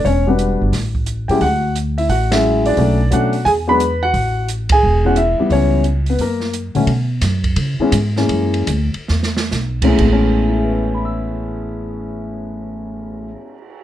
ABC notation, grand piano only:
X:1
M:4/4
L:1/8
Q:"Swing" 1/4=176
K:A
V:1 name="Grand piano"
[Cc] [B,B]2 z4 [=G=g] | [Ff]2 z [Ee] [Ff] e2 [Dd]- | [Dd]2 [Ff]2 [Gg] [Bb]2 [Ff]- | [Ff]2 z [Gg]2 [Ff] [Ee]2 |
[Cc]2 z [B,B] [^A,^A]2 z2 | z8 | z8 | z2 [EGBegbe']6- |
[EGBegbe']8 |]
V:2 name="Grand piano"
z [=G,B,DF]3 z3 [F,^G,CE] | z4 z [F,G,CE]3 | [F,A,CD] z [F,A,CD] z2 [F,G,B,D] z2 | z4 z [E,G,B,C] z [E,=G,B,E]- |
[E,=G,B,E]2 z4 z [D,F,A,C] | z4 z [E,G,B,C] z [E,G,_B,C]- | [E,G,_B,C]2 z4 z [A,,E,G,=B,C] | [A,,G,B,C]8- |
[A,,G,B,C]8 |]